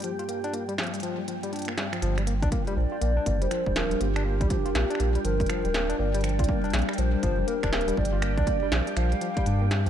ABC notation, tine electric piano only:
X:1
M:4/4
L:1/16
Q:"Swing 16ths" 1/4=121
K:Gm
V:1 name="Tine electric piano" clef=bass
F, F B, D B, G, F, G, F, G, F, G, D B, G, F, | F, G, B, D B, G, F, F B, D B, G, F, G, F, G, | B, D B, G, F, F B, D B, G, F, G, F, G, B, D | B, G, F, F B, D B, G, F, G, F, G, B, D B, G, |
F, F B, D B, G, F, G, F, G, F, G, D B, G, F, |]